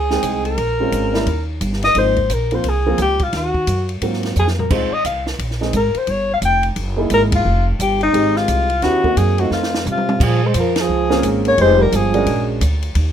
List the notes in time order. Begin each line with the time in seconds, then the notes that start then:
Already playing: C#2 G#4
0.10 G#3 C4 D#4 G5, snare
0.23 C2, kick, hi-hat pedal, ride
0.45 A#4, ride
0.58 A#1, kick, ride
0.80 G#3 C4 C#4 F4
0.92 G#1, kick, hi-hat pedal, ride
1.13 G3 A#3 C#4 E4, snare
1.26 D#2, kick, ride
1.61 G1, kick, hi-hat pedal, ride
1.73 snare
1.82 D#5, snare, ride
1.95 G#1 F3 A#3 C4 D#4 C5, kick, ride
2.16 kick, ride
2.29 A#1 A#4, kick, hi-hat pedal, ride
2.51 F3 A#3 C4 F4 C5, ride
2.64 C2, kick, ride
2.68 G#4
2.86 F3 A#3 C4 F4
2.98 C#2 G4, kick, hi-hat pedal, ride
3.19 F4, kick, ride
3.32 D#2, kick, snare, ride
3.37 F#4
3.54 kick
3.67 F#2, kick, hi-hat pedal, ride
3.89 ride
4.01 G#2 F#3 A#3 C4 F4, kick, ride
4.13 snare
4.23 snare, ride
4.36 F2 G#4, hi-hat pedal
4.47 snare
4.59 A#4, floor tom
4.70 C#2 G#3 C4 D#4 F4 C5, kick, crash
4.92 D#5, muted upright bass stroke
5.05 C2 F5, kick, hi-hat pedal, ride
5.27 snare
5.39 A#1, kick, ride
5.51 snare
5.61 G#3 C4 D#4 G#4, snare
5.73 G#1 A#4, kick, hi-hat pedal, ride
5.94 C5, muted upright bass stroke, ride
6.07 G1 C#5, kick, ride
6.34 F5
6.42 F1 G5, kick, hi-hat pedal, ride
6.63 ride
6.76 F#1, kick, ride
6.97 A#3 D#4 E4 G#4
7.10 G#1 A#4, kick, hi-hat pedal, ride
7.32 F4, kick, ride
7.45 F1
7.79 G1 G4, kick, hi-hat pedal, ride
8.01 D#4, ride
8.13 G#1 G#3 C4 D#4 G4, kick, ride
8.36 F4, snare
8.48 C2, kick, hi-hat pedal, ride
8.70 ride
8.82 D#2 B3 C#4 E4 F#4 G4, kick, snare, ride
9.04 A#3 C4 D#4 F#4, kick
9.17 F#2 G#4, kick, hi-hat pedal, ride
9.38 A3 C4 D#4 F4 F#4, ride
9.51 F2 F4, snare
9.63 snare
9.74 snare
9.86 C3, hi-hat pedal, mid tom
9.91 F4
9.98 mid tom
10.09 mid tom
10.20 A#2 F3 G#4, kick, crash
10.44 G#3 C5
10.54 F2 F3, kick, hi-hat pedal, ride
10.60 A#4
10.76 F3, snare, ride
10.81 G#4
10.89 C#2
11.10 A#3 C4 C#4 F4 G#4, snare
11.23 G#1, kick, hi-hat pedal, ride
11.45 A#3 C#5, ride
11.58 F1 G#3 C4 D#4 F4 G4 C5, kick, ride
11.79 G3 A#4
11.92 G1 F3 G#4, kick, hi-hat pedal, ride
12.13 G#3 C#4 D4 F#4 A#4, ride
12.26 A#1, kick, ride
12.61 D2, kick, hi-hat pedal, ride
12.83 ride
12.95 D#2, kick, ride